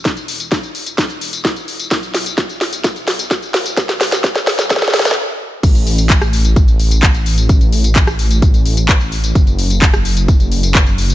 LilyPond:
<<
  \new Staff \with { instrumentName = "Detuned saw bass" } { \clef bass \time 4/4 \key e \mixolydian \tempo 4 = 129 e,,1 | b,,1~ | b,,2. r4 | a,,1~ |
a,,1 | fis,,1 | }
  \new DrumStaff \with { instrumentName = "Drums" } \drummode { \time 4/4 <hh bd sn tamb>16 <hh tamb>16 hho16 <hh tamb>16 <hh bd sn tamb>16 <hh tamb>16 hho16 <hh tamb>16 <hh bd sn tamb>16 <hh tamb>16 hho16 <hh tamb>16 <hh bd sn tamb>16 <hh tamb>16 hho16 <hh tamb>16 | <hh bd sn tamb>16 <hh tamb>16 <hho sn>16 <hh tamb>16 <hh bd sn tamb>16 <hh tamb>16 <hho sn>16 <hh tamb>16 <hh bd sn tamb>16 <hh tamb>16 <hho sn>16 <hh tamb>16 <hh bd sn tamb>16 <hh tamb>16 <hho sn>16 <hh tamb>16 | <hh bd sn tamb>16 <hh sn tamb>16 <hho sn>16 <hh sn tamb>16 <hh bd sn tamb>16 <hh sn tamb>16 <hho sn>16 <hh sn tamb>16 <hh bd sn tamb>32 sn32 <hh sn tamb>32 sn32 <hho sn>32 sn32 <hh sn tamb>32 sn32 r4 | <cymc hh bd tamb>16 <hh tamb>16 hho16 <hh tamb>16 <hc hh bd tamb>16 <hh ss tamb>16 hho16 <hh tamb>16 <hh bd tamb>16 <hh tamb>16 hho16 <hh tamb>16 <hc hh bd tamb>16 <hh tamb>16 hho16 <hh tamb>16 |
<hh bd tamb>16 <hh tamb>16 hho16 <hh tamb>16 <hc hh bd tamb>16 <hh ss tamb>16 hho16 <hh tamb>16 <hh bd tamb>16 <hh tamb>16 hho16 <hh tamb>16 <hc hh bd tamb>16 <hh tamb>16 hho16 <hh tamb>16 | <hh bd tamb>16 <hh tamb>16 hho16 <hh tamb>16 <hc hh bd tamb>16 <hh ss tamb>16 hho16 <hh tamb>16 <hh bd tamb>16 <hh tamb>16 hho16 <hh tamb>16 <hc hh bd tamb>16 <hh tamb>16 hho16 <hh tamb>16 | }
>>